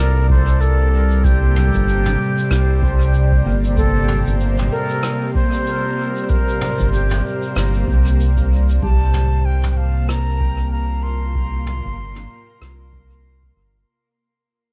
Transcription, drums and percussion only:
0.30 kick
0.48 shaker
0.61 shaker
1.11 shaker
1.24 kick, shaker
1.56 mid tom
1.74 kick, shaker
1.88 shaker
2.06 mid tom, shaker
2.38 shaker
2.51 cross-stick, shaker
2.82 kick
3.01 shaker
3.14 shaker
3.32 kick
3.64 shaker
3.77 kick, shaker
4.08 mid tom
4.27 shaker
4.41 shaker
4.57 mid tom, shaker
4.90 shaker
5.03 cross-stick, shaker
5.35 kick
5.53 shaker
5.67 shaker
6.17 shaker
6.29 kick, shaker
6.48 shaker
6.61 mid tom
6.79 kick, shaker
6.93 shaker
7.11 mid tom, shaker
7.43 shaker
7.56 cross-stick, shaker
7.74 shaker
7.88 kick
8.06 shaker
8.20 shaker
8.38 kick, shaker
8.69 shaker
8.83 kick
9.14 mid tom
9.63 mid tom
10.09 cross-stick
10.40 kick
11.35 kick
11.67 mid tom
11.85 kick
12.16 mid tom
12.62 cross-stick
12.93 kick
13.43 kick

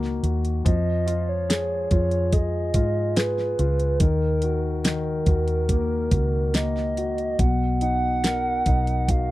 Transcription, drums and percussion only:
0.04 snare
0.24 closed hi-hat
0.45 closed hi-hat
0.66 kick, closed hi-hat
1.08 closed hi-hat
1.50 snare, closed hi-hat
1.91 kick, closed hi-hat
2.11 closed hi-hat
2.32 kick, closed hi-hat
2.74 kick, closed hi-hat
3.16 snare, closed hi-hat
3.38 snare
3.59 closed hi-hat
3.80 closed hi-hat
4.00 kick, closed hi-hat
4.42 closed hi-hat
4.85 snare, closed hi-hat
5.26 kick, closed hi-hat
5.48 closed hi-hat
5.69 kick, closed hi-hat
6.11 kick, closed hi-hat
6.54 snare, closed hi-hat
6.77 snare
6.97 closed hi-hat
7.18 closed hi-hat
7.39 kick, closed hi-hat
7.81 closed hi-hat
8.24 snare, closed hi-hat
8.66 kick, closed hi-hat
8.87 closed hi-hat
9.08 kick, closed hi-hat

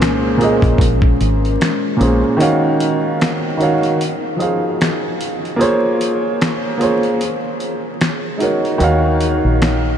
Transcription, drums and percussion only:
0.02 finger snap, snare, closed hi-hat
0.41 closed hi-hat
0.62 kick, closed hi-hat
0.78 kick, closed hi-hat
1.02 kick
1.21 closed hi-hat
1.45 closed hi-hat
1.61 finger snap, snare, closed hi-hat
2.01 closed hi-hat
2.40 closed hi-hat
2.80 closed hi-hat
3.21 finger snap, snare, closed hi-hat
3.61 closed hi-hat
3.83 closed hi-hat
4.01 closed hi-hat
4.40 closed hi-hat
4.81 finger snap, snare, closed hi-hat
5.21 closed hi-hat
5.45 closed hi-hat
5.61 closed hi-hat
6.01 closed hi-hat
6.41 finger snap, snare, closed hi-hat
6.81 closed hi-hat
7.03 closed hi-hat
7.21 closed hi-hat
7.60 closed hi-hat
8.01 finger snap, snare, closed hi-hat
8.40 closed hi-hat
8.65 closed hi-hat
8.80 closed hi-hat
9.21 closed hi-hat
9.62 finger snap, snare, closed hi-hat

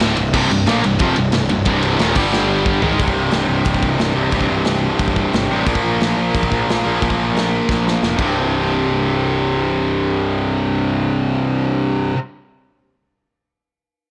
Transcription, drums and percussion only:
0.00 snare, ride
0.17 ride
0.34 kick, crash
0.51 ride
0.67 snare, ride
0.84 ride
0.99 kick, ride
1.16 ride
1.32 snare, ride
1.49 ride
1.65 kick, ride
1.83 ride
1.99 snare, ride
2.15 kick, crash
2.33 snare
2.66 kick
2.82 floor tom
2.99 kick, open hi-hat
3.08 kick
3.31 snare, open hi-hat
3.65 kick, open hi-hat
3.74 kick
3.83 kick
3.99 snare, open hi-hat
4.31 kick, open hi-hat
4.41 kick
4.65 snare, open hi-hat
4.99 kick, open hi-hat
5.08 kick
5.16 kick
5.33 snare, open hi-hat
5.66 kick, open hi-hat
5.75 kick
6.01 snare, open hi-hat
6.35 kick, open hi-hat
6.43 kick
6.52 kick
6.69 snare, open hi-hat
7.02 kick, open hi-hat
7.10 kick
7.37 snare, open hi-hat
7.69 kick, snare
7.88 snare
8.03 snare
8.19 kick, crash

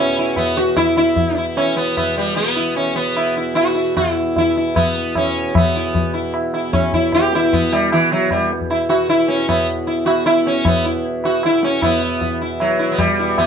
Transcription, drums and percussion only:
0.17 tabla na
0.36 tabla na, tabla ge
0.57 tabla te
0.77 tabla na, tabla ge
0.97 tabla te
1.16 tabla tin, tabla ge
1.57 tabla na
1.97 tabla na, tabla ge
2.37 tabla te
2.57 tabla te
2.77 tabla tin
3.17 tabla na
3.57 tabla na
3.97 tabla na, tabla ge
4.36 tabla tin, tabla ge
4.76 tabla na, tabla ge
4.95 tabla te
5.15 tabla na, tabla ge
5.55 tabla na, tabla ge
5.95 tabla tin, tabla ge
6.34 tabla na
6.54 tabla na
6.73 tabla na, tabla ge
6.93 tabla ge
7.12 tabla na, tabla ge
7.33 tabla te
7.53 tabla tin, tabla ge
7.73 tabla na
7.92 tabla na
8.12 tabla na
8.31 tabla na, tabla ge
8.51 tabla te
8.61 tabla ge
8.71 tabla na
8.90 tabla na
9.10 tabla na
9.29 tabla te
9.49 tabla na, tabla ge
10.07 tabla na
10.27 tabla na
10.46 tabla te
10.65 tabla na, tabla ge
11.24 tabla na
11.43 tabla na
11.63 tabla te
11.82 tabla na, tabla ge
12.21 tabla tin, tabla ge
12.60 tabla na
12.99 tabla na, tabla ge
13.38 tabla na, tabla ge

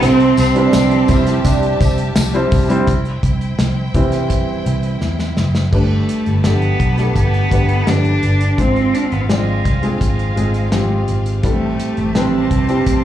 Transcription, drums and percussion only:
0.02 closed hi-hat, tambourine
0.20 closed hi-hat
0.37 closed hi-hat, tambourine
0.56 closed hi-hat
0.73 snare, closed hi-hat, tambourine
0.91 closed hi-hat
1.08 kick, closed hi-hat, tambourine
1.27 snare, closed hi-hat
1.44 kick, closed hi-hat, tambourine
1.63 closed hi-hat
1.81 kick, closed hi-hat, tambourine
1.98 closed hi-hat
2.16 snare, closed hi-hat, tambourine
2.34 closed hi-hat
2.51 kick, open hi-hat, tambourine
2.70 closed hi-hat
2.87 kick, closed hi-hat
3.05 closed hi-hat
3.23 kick, closed hi-hat
3.41 closed hi-hat
3.59 snare, closed hi-hat
3.94 kick, closed hi-hat
4.12 snare, closed hi-hat
4.30 kick, closed hi-hat
4.66 closed hi-hat
4.83 closed hi-hat
5.01 snare
5.19 snare
5.37 snare
5.55 snare
5.73 kick, crash
6.09 closed hi-hat
6.26 closed hi-hat
6.44 snare, closed hi-hat
6.62 closed hi-hat
6.80 kick, closed hi-hat
6.98 snare, closed hi-hat
7.16 kick, closed hi-hat
7.34 closed hi-hat
7.51 kick, closed hi-hat
7.69 closed hi-hat
7.87 snare, closed hi-hat
8.04 closed hi-hat
8.23 closed hi-hat
8.41 closed hi-hat
8.58 kick, closed hi-hat
8.76 closed hi-hat
8.95 closed hi-hat
9.12 closed hi-hat
9.30 snare, closed hi-hat
9.65 kick, closed hi-hat
9.83 closed hi-hat
10.01 kick, closed hi-hat
10.19 closed hi-hat
10.37 closed hi-hat
10.54 closed hi-hat
10.72 snare, closed hi-hat
11.08 closed hi-hat
11.26 closed hi-hat
11.43 kick, closed hi-hat
11.80 closed hi-hat
11.97 closed hi-hat
12.15 snare, closed hi-hat
12.51 kick, closed hi-hat
12.69 closed hi-hat
12.86 kick, closed hi-hat

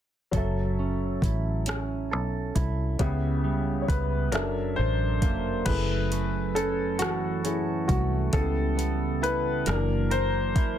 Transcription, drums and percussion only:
0.33 kick, closed hi-hat
1.22 kick, closed hi-hat
1.66 cross-stick, closed hi-hat
2.56 kick, closed hi-hat
2.99 kick, closed hi-hat
3.89 kick, closed hi-hat
4.32 cross-stick, closed hi-hat
5.22 kick, closed hi-hat
5.66 kick, closed hi-hat, crash
6.12 closed hi-hat
6.56 closed hi-hat
6.99 cross-stick, closed hi-hat
7.45 closed hi-hat
7.89 kick, closed hi-hat
8.33 kick, closed hi-hat
8.79 closed hi-hat
9.24 closed hi-hat
9.66 cross-stick, closed hi-hat
10.11 closed hi-hat
10.56 kick, closed hi-hat

